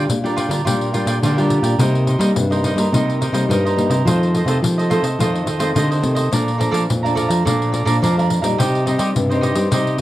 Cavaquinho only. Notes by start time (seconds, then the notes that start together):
0.24 A#4 D5 G5
0.36 F4 A#4 D5 G5
0.49 A#4 D5 G5
0.65 F4 A#4 D5 G5
0.93 F4 A#4 D5 G5
1.07 F4 A#4 D5 G5
1.24 F4 A#4 D5 G5
1.38 A#4 D5 G5
1.63 A#4 D5 G5
1.79 D#4 A#4 C5 D#5
2.07 D#4 A#4 C5 D#5
2.19 D#4 A#4 C5 D#5
2.51 A#4 C5 D#5
2.64 D#4 A#4 C5 D#5
2.77 A#4 C5 D#5
2.94 D#4 A#4 C5 D#5
3.21 D#4 A#4 C5 D#5
3.33 D#4 A#4 C5 D#5
3.50 D#4 A#4 C5 D#5
3.65 A#4 C5 D#5
3.90 A#4 C5 D#5
4.07 F4 A4 C5 D#5
4.34 F4 A4 C5 D#5
4.47 F4 A4 C5 D#5
4.78 A4 C5 D#5
4.90 F4 A4 C5 D#5
5.03 A4 C5 D#5
5.20 F4 A4 C5 D#5
5.46 F4 A4 C5 D#5
5.59 F4 A4 C5 D#5
5.75 F4 A4 C5 D#5
5.91 A4 C5 D#5
6.15 A4 C5 D#5
6.32 A4 D5 F5 A#5
6.58 A4 D5 F5 A#5
6.71 A4 D5 F5 A#5
7.03 D5 F5 A#5
7.15 A4 D5 F5 A#5
7.28 D5 F5 A#5
7.45 A4 D5 F5 A#5
7.72 A4 D5 F5 A#5
7.85 A4 D5 F5 A#5
8.02 A4 D5 F5 A#5
8.17 D5 F5 A#5
8.42 D5 F5 A#5
8.58 D#4 G4 C5 D#5
8.86 D#4 G4 C5 D#5
8.98 D#4 G4 C5 D#5
9.29 G4 C5 D#5
9.41 D#4 G4 C5 D#5
9.55 G4 C5 D#5
9.71 D#4 G4 C5 D#5